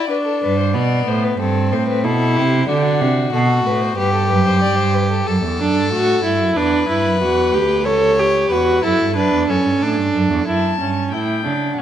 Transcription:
0.09 0.76 D4 medium
0.09 0.16 B4 medium
0.26 0.42 A4 medium
0.43 0.76 G2 medium
0.43 0.58 B4 medium
0.59 0.74 C5 medium
0.74 1.07 B2 medium
0.74 1.39 B3 medium
0.74 1.09 D5 medium
1.07 1.39 A2 medium
1.07 1.25 C5 medium
1.24 1.40 B4 medium
1.39 1.73 G2 medium
1.39 2.05 C4 medium
1.39 1.74 A4 medium
1.72 2.06 A2 medium
1.72 1.87 C5 medium
1.88 2.03 B4 medium
2.04 2.38 B2 medium
2.04 2.67 E4 medium
2.04 2.37 A4 medium
2.36 2.68 C3 medium
2.36 2.67 G4 medium
2.68 3.02 D3 medium
2.68 3.32 D4 medium
2.68 2.76 F#4 medium
2.75 2.84 G4 medium
2.82 3.34 F#4 medium
3.01 3.33 C3 medium
3.33 3.65 B2 medium
3.33 3.96 F#4 medium
3.33 3.67 A4 medium
3.65 3.97 A2 medium
3.65 3.82 B4 medium
3.81 3.96 C5 medium
3.97 4.32 G2 medium
3.97 5.28 G4 medium
3.97 4.13 B4 medium
4.14 4.29 A4 medium
4.29 4.64 F#2 medium
4.29 4.45 B4 medium
4.46 4.61 C5 medium
4.62 5.27 G2 medium
4.62 4.77 D5 medium
4.78 4.95 C5 medium
4.94 5.10 B4 medium
5.10 5.26 A4 medium
5.27 5.43 F#2 medium
5.27 6.56 A4 medium
5.44 5.61 E2 medium
5.60 5.78 F#2 medium
5.60 5.90 D4 medium
5.76 5.93 G2 medium
5.92 6.24 A2 medium
5.92 6.23 F#4 medium
6.24 6.42 G2 medium
6.24 6.58 E4 medium
6.41 6.56 F#2 medium
6.56 6.88 E2 medium
6.56 6.88 D4 medium
6.56 7.87 B4 medium
6.89 7.07 G2 medium
6.89 7.21 E4 medium
7.05 7.23 F#2 medium
7.21 7.55 E2 medium
7.21 7.55 F#4 medium
7.54 7.88 D2 medium
7.54 7.86 G4 medium
7.85 8.51 C#2 medium
7.85 8.21 A4 medium
7.85 8.49 C#5 medium
8.19 8.53 G4 medium
8.50 8.83 E2 medium
8.50 8.83 F#4 medium
8.50 8.85 B4 medium
8.83 8.90 F#2 medium
8.83 9.16 E4 medium
8.83 9.15 A4 medium
9.00 9.18 G2 medium
9.16 9.32 F#2 medium
9.16 9.51 D4 medium
9.16 9.48 B4 medium
9.33 9.48 E2 medium
9.48 9.56 F#2 medium
9.48 9.84 C#4 medium
9.48 10.45 A4 medium
9.65 9.72 G2 medium
9.81 9.99 A2 medium
9.81 10.47 D4 medium
9.98 10.14 G2 medium
10.14 10.30 F#2 medium
10.31 10.47 E2 medium
10.47 10.78 F#2 medium
10.47 10.78 E4 medium
10.47 11.08 A5 medium
10.80 11.12 G2 medium
10.80 11.14 C#4 medium
11.12 11.47 A2 medium
11.12 11.45 E4 medium
11.12 11.76 G5 medium
11.45 11.77 C#3 medium
11.45 11.80 D4 medium
11.77 11.82 B2 medium
11.77 11.82 C#4 medium
11.77 11.82 F#5 medium

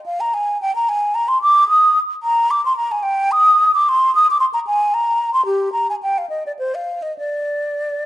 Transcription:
0.06 0.22 F5 medium
0.20 0.35 A#5 medium
0.34 0.60 G#5 medium
0.62 0.74 G5 medium
0.76 0.90 A#5 medium
0.89 1.16 G#5 medium
1.15 1.30 A#5 medium
1.28 1.41 C6 medium
1.42 1.68 D6 medium
1.69 1.99 D#6 medium
2.23 2.52 A#5 medium
2.51 2.64 D6 medium
2.66 2.76 C6 medium
2.77 2.93 A#5 medium
2.92 3.04 G#5 medium
3.03 3.33 G5 medium
3.32 3.72 D#6 loud
3.74 3.90 D6 medium
3.89 4.14 C6 medium
4.15 4.27 D#6 medium
4.31 4.39 D6 medium
4.40 4.46 C6 medium
4.54 4.60 A#5 medium
4.67 4.96 G#5 medium
4.94 5.33 A#5 medium
5.34 5.45 C6 medium
5.46 5.72 G4 medium
5.73 5.87 A#5 medium
5.90 5.96 G#5 medium
6.03 6.20 G5 medium
6.18 6.29 F5 medium
6.29 6.43 D#5 medium
6.46 6.52 D5 medium
6.59 6.76 C5 medium
6.75 7.04 F5 medium
7.03 7.17 D#5 medium
7.18 8.06 D5 medium

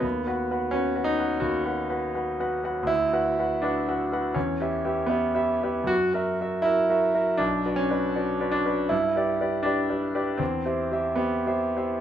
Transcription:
0.00 0.26 D#2 soft
0.00 0.73 B3 medium
0.26 0.48 F#4 soft
0.26 0.49 B4 soft
0.26 0.49 F#5 soft
0.51 0.71 F#4 soft
0.51 0.72 B4 soft
0.51 0.72 F#5 soft
0.71 1.07 C#4 medium
0.71 0.93 F#4 soft
0.71 0.94 B4 soft
0.71 0.95 F#5 soft
0.95 1.16 F#4 soft
0.95 1.17 B4 soft
0.95 1.17 F#5 soft
1.04 1.41 D#4 medium
1.19 1.38 F#4 soft
1.19 1.41 B4 soft
1.19 1.40 F#5 soft
1.40 1.65 D#2 soft
1.40 1.63 F#4 medium
1.65 1.87 F#4 soft
1.65 1.88 B4 soft
1.65 1.88 F#5 soft
1.90 2.12 F#4 soft
1.90 2.13 B4 soft
1.90 2.13 F#5 soft
2.15 2.37 F#4 soft
2.15 2.38 B4 soft
2.15 2.37 F#5 soft
2.40 2.62 F#4 soft
2.40 2.62 B4 soft
2.40 2.62 F#5 soft
2.64 2.86 F#4 soft
2.64 2.86 B4 soft
2.64 2.87 F#5 soft
2.83 3.10 D2 soft
2.87 3.61 E4 medium
3.13 3.35 F#4 soft
3.13 3.35 B4 soft
3.13 3.36 F#5 soft
3.38 3.60 F#4 soft
3.38 3.61 B4 soft
3.38 3.61 F#5 soft
3.62 4.35 D4 medium
3.62 3.85 F#4 soft
3.62 3.85 B4 soft
3.62 3.85 F#5 soft
3.88 4.10 F#4 soft
3.88 4.10 B4 soft
3.88 4.10 F#5 soft
4.12 4.34 F#4 soft
4.12 4.34 B4 soft
4.12 4.34 F#5 soft
4.34 4.59 E2 soft
4.34 5.09 C#4 medium
4.61 4.82 G4 soft
4.61 4.82 B4 soft
4.61 4.83 E5 soft
4.85 5.07 G4 soft
4.85 5.07 B4 soft
4.85 5.07 E5 soft
5.06 5.88 B3 medium
5.06 5.33 G4 soft
5.06 5.33 B4 soft
5.06 5.33 E5 soft
5.35 5.60 G4 soft
5.35 5.60 B4 soft
5.35 5.60 E5 soft
5.63 5.87 G4 soft
5.63 5.87 B4 soft
5.63 5.87 E5 soft
5.84 6.12 F#2 soft
5.84 6.12 F#4 medium
6.14 6.37 F#4 soft
6.14 6.37 A#4 soft
6.14 6.38 E5 soft
6.41 6.63 F#4 soft
6.41 6.63 A#4 soft
6.41 6.63 E5 soft
6.62 7.38 E4 medium
6.62 6.87 F#4 soft
6.62 6.87 A#4 soft
6.62 6.87 E5 soft
6.90 7.12 F#4 soft
6.90 7.12 A#4 soft
6.90 7.12 E5 soft
7.14 7.37 F#4 soft
7.14 7.37 A#4 soft
7.14 7.37 E5 soft
7.37 7.64 B1 medium
7.37 7.77 D4 medium
7.65 7.88 F#4 soft
7.65 7.88 B4 soft
7.65 7.89 D5 soft
7.76 8.52 C#4 medium
7.90 8.13 F#4 soft
7.90 8.13 B4 soft
7.90 8.13 D5 soft
8.15 8.38 F#4 soft
8.15 8.38 B4 soft
8.15 8.38 D5 soft
8.40 8.63 F#4 soft
8.40 8.63 B4 soft
8.40 8.63 D5 soft
8.51 8.90 D4 medium
8.66 8.89 F#4 soft
8.66 8.88 B4 soft
8.66 8.89 D5 soft
8.89 9.15 G2 medium
8.89 9.64 E4 medium
9.16 9.38 G4 soft
9.16 9.38 B4 soft
9.16 9.39 D5 soft
9.41 9.63 G4 soft
9.41 9.63 B4 soft
9.41 9.63 D5 soft
9.63 10.38 D4 medium
9.63 9.87 G4 soft
9.63 9.87 B4 soft
9.63 9.88 D5 soft
9.89 10.12 G4 soft
9.89 10.12 B4 soft
9.89 10.12 D5 soft
10.14 10.37 G4 soft
10.14 10.37 B4 soft
10.14 10.38 D5 soft
10.37 10.64 E2 soft
10.37 11.17 C4 medium
10.65 10.89 G4 soft
10.65 10.89 C5 soft
10.65 10.89 E5 soft
10.91 11.15 G4 soft
10.91 11.16 C5 soft
10.91 11.16 E5 soft
11.16 12.01 B3 medium
11.16 11.43 G4 soft
11.16 11.43 C5 soft
11.16 11.43 E5 soft
11.46 11.73 G4 soft
11.46 11.73 C5 soft
11.46 11.73 E5 soft
11.77 12.01 G4 soft
11.77 12.01 C5 soft
11.77 12.01 E5 soft

